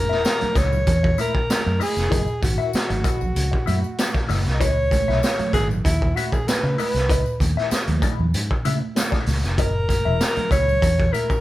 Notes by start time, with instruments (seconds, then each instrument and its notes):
Already playing: fingered electric bass F#1, alto saxophone A#4
0.09 fingered electric bass E1, clean electric guitar E4 A#4 E5, snare
0.25 snare, closed hi-hat, tambourine
0.41 muted clean electric guitar stroke, muted fingered electric bass stroke, closed hi-hat, high conga, low conga
0.56 fingered electric bass C#2, clean electric guitar E4 A#4 D#5, alto saxophone C#5, kick, snare, closed hi-hat, tambourine, muted conga
0.72 muted clean electric guitar stroke, tambourine, low conga
0.87 fingered electric bass E2, kick, closed hi-hat, tambourine
1.03 muted clean electric guitar stroke, kick
1.18 clean electric guitar E4 A#4 E5, alto saxophone A#4, closed hi-hat, tambourine, high conga
1.35 muted clean electric guitar stroke, kick
1.50 snare, closed hi-hat, tambourine, muted conga, high conga
1.66 fingered electric bass F#2, muted clean electric guitar stroke
1.80 clean electric guitar E4 A#4 D#5, alto saxophone G#4, open hi-hat, tambourine, high conga
1.96 fingered electric bass F1, muted clean electric guitar stroke, snare, closed hi-hat, tambourine
2.10 fingered electric bass F#1, clean electric guitar E4 A#4 D#5, kick, closed hi-hat, tambourine, muted conga
2.27 tambourine
2.42 fingered electric bass G#1, alto saxophone F#4, muted clean electric guitar stroke, kick, closed hi-hat, tambourine, high conga
2.58 clean electric guitar E4 A#4 E5
2.73 muted fingered electric bass stroke, snare, closed hi-hat, tambourine
2.90 fingered electric bass G#1, muted clean electric guitar stroke, closed hi-hat, high conga, low conga
3.04 clean electric guitar E4 A#4 D#5, kick, closed hi-hat, tambourine
3.21 fingered electric bass A#1, muted clean electric guitar stroke, tambourine, low conga
3.36 fingered electric bass C#2, closed hi-hat, tambourine, muted conga
3.51 muted clean electric guitar stroke, kick
3.66 fingered electric bass F#2, clean electric guitar E4 A#4 E5, closed hi-hat, tambourine, muted conga, high conga
3.83 muted clean electric guitar stroke, tambourine
3.98 snare, closed hi-hat, tambourine, high conga
4.14 muted clean electric guitar stroke, kick, snare
4.29 fingered electric bass F#1, clean electric guitar E4 A#4 D#5, snare, open hi-hat, tambourine, high conga
4.45 fingered electric bass C2, muted clean electric guitar stroke, snare, closed hi-hat
4.54 alto saxophone D#5
4.60 fingered electric bass C#2, clean electric guitar E4 B4 D#5, alto saxophone C#5, kick, closed hi-hat, tambourine, muted conga
4.91 muted clean electric guitar stroke, kick, closed hi-hat, tambourine, high conga
5.08 fingered electric bass B1, clean electric guitar E4 B4 E5, snare
5.23 snare, closed hi-hat, tambourine
5.39 muted fingered electric bass stroke, muted clean electric guitar stroke, closed hi-hat, high conga, low conga
5.53 fingered electric bass G#1, clean electric guitar E4 B4 D#5, alto saxophone G#4, kick, snare, closed hi-hat, tambourine
5.70 muted clean electric guitar stroke, tambourine, low conga
5.84 fingered electric bass D#2, alto saxophone E4, kick, closed hi-hat, tambourine
6.02 muted clean electric guitar stroke, kick
6.15 clean electric guitar E4 B4 E5, alto saxophone F#4, closed hi-hat, tambourine, high conga
6.32 alto saxophone G#4, muted clean electric guitar stroke, kick, tambourine
6.48 alto saxophone B4, snare, closed hi-hat, tambourine, muted conga, high conga
6.63 fingered electric bass C#3, muted clean electric guitar stroke
6.78 clean electric guitar E4 B4 D#5, alto saxophone B4, open hi-hat, tambourine, high conga
6.94 fingered electric bass C2, snare, closed hi-hat
7.09 fingered electric bass C#2, clean electric guitar E4 B4 D#5, kick, closed hi-hat, tambourine, muted conga
7.26 tambourine
7.40 fingered electric bass D#2, muted clean electric guitar stroke, kick, closed hi-hat, tambourine, high conga
7.57 clean electric guitar E4 B4 E5, snare
7.71 muted fingered electric bass stroke, snare, closed hi-hat, tambourine, muted conga
7.87 fingered electric bass D#2, muted clean electric guitar stroke, closed hi-hat, high conga, low conga
8.02 clean electric guitar E4 B4 D#5, kick, closed hi-hat, tambourine, muted conga
8.19 fingered electric bass E2, muted clean electric guitar stroke, low conga
8.34 fingered electric bass G#2, closed hi-hat, tambourine
8.51 muted clean electric guitar stroke, kick
8.65 fingered electric bass C#3, clean electric guitar E4 B4 E5, closed hi-hat, tambourine, muted conga, high conga
8.81 muted clean electric guitar stroke
8.95 muted clean electric guitar stroke, snare, closed hi-hat, tambourine, high conga
9.12 clean electric guitar E4 B4 D#5, kick, snare
9.26 fingered electric bass C#2, muted clean electric guitar stroke, snare, open hi-hat, tambourine, muted conga, high conga
9.43 fingered electric bass F1, muted clean electric guitar stroke, snare, closed hi-hat, tambourine
9.58 fingered electric bass F#1, clean electric guitar E4 A#4 D#5, alto saxophone A#4, kick, closed hi-hat, tambourine, muted conga
9.89 muted clean electric guitar stroke, kick, closed hi-hat, tambourine, high conga
10.05 fingered electric bass E1, clean electric guitar E4 A#4 E5
10.20 snare, closed hi-hat, tambourine, muted conga
10.36 muted clean electric guitar stroke, muted fingered electric bass stroke, closed hi-hat, high conga, low conga
10.51 fingered electric bass C#2, clean electric guitar E4 A#4 D#5, alto saxophone C#5, kick, closed hi-hat, tambourine, muted conga
10.68 muted clean electric guitar stroke, tambourine, low conga
10.82 fingered electric bass E2, kick, closed hi-hat, tambourine, muted conga
10.99 muted clean electric guitar stroke, kick
11.13 clean electric guitar E4 A#4 E5, alto saxophone A#4, closed hi-hat, tambourine, high conga
11.30 muted clean electric guitar stroke, kick, tambourine